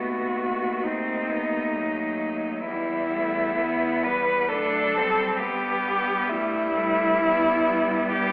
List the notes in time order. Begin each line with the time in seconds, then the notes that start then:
Already playing: D#2 A3 B3 F#4
0.83 C4 D#4
1.32 B3
1.77 F#3
2.66 E2 G3 E4
3.16 A3
3.60 B3
4.04 G3 B4
4.49 F#2 A3 D4 A4
4.95 G3 C4
5.40 G2 B3 G4
6.29 G3 A3 E4
6.75 G3 A3
7.22 B3
8.12 G2 G4